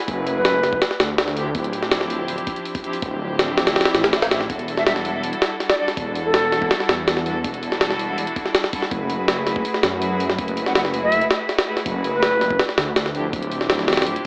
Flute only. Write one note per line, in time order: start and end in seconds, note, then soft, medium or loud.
0.36 0.86 B4 medium
4.78 4.84 E5 medium
4.87 4.93 E5 medium
5.70 5.75 D5 medium
5.79 5.85 D5 medium
6.25 6.76 A4 medium
10.67 10.72 F#5 medium
10.76 10.82 F#5 medium
11.04 11.25 E5 medium
12.14 12.64 B4 medium